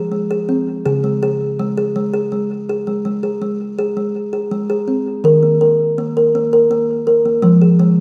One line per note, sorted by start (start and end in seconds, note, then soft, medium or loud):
0.00 0.81 F3 medium
0.00 0.12 G#4 medium
0.12 0.30 G#3 medium
0.31 0.49 G#4 medium
0.49 0.85 C4 medium
0.86 3.01 C#3 medium
0.86 1.04 G#4 medium
1.04 1.22 G#3 medium
1.23 1.59 G#4 medium
1.59 1.77 G#3 medium
1.77 1.95 G#4 medium
1.96 2.14 G#3 medium
2.13 2.32 G#4 medium
2.32 2.68 G#3 medium
2.69 2.87 G#4 medium
2.87 3.04 G#3 medium
3.05 3.40 G#3 medium
3.23 3.41 G#4 medium
3.42 3.78 G#3 medium
3.79 3.96 G#4 medium
3.97 4.33 G#3 medium
4.33 4.51 G#4 medium
4.51 4.69 G#3 medium
4.70 4.88 G#4 medium
4.88 5.24 C4 medium
5.24 7.39 D#3 medium
5.24 5.43 A#4 medium
5.43 5.61 A#3 medium
5.61 5.97 A#4 medium
5.98 6.16 A#3 medium
6.17 6.34 A#4 medium
6.35 6.53 A#3 medium
6.53 6.71 A#4 medium
6.71 7.07 A#3 medium
7.07 7.25 A#4 medium
7.26 7.43 A#3 medium
7.42 8.00 F3 medium
7.42 7.61 G#3 medium
7.62 7.80 G#4 medium
7.79 8.00 G#3 medium